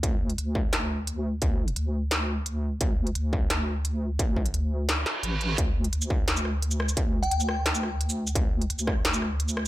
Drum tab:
HH |x--xx---x---x---|x--xx---x---x---|x--xx---x---x---|x--xx---x---x-x-|
SH |----------------|----------------|----------------|----------------|
SD |--------o-------|--------o-------|--------o-------|--------o-o-----|
BD |o-----o---------|o---------------|o-----o---------|o-o-------------|

HH |x--xx---x---x---|x--xx---x---x---|x--xx---x---x---|
SH |-----x---x---x-x|-----x---x---x-x|-----x---x---x--|
SD |--------o-r---r-|------r-o-r-----|------r-o-r---r-|
BD |o-----o---------|o---------------|o-----o---------|